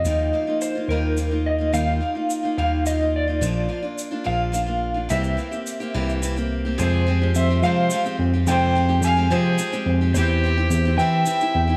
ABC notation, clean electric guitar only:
X:1
M:6/8
L:1/8
Q:3/8=71
K:Ebmix
V:1 name="Clean electric guitar"
e2 c B2 e | f3 f e =d- | =d2 z f3 | =e4 z2 |
[K:Fm] c2 =e f2 z | g2 a c2 z | c3 g3 |]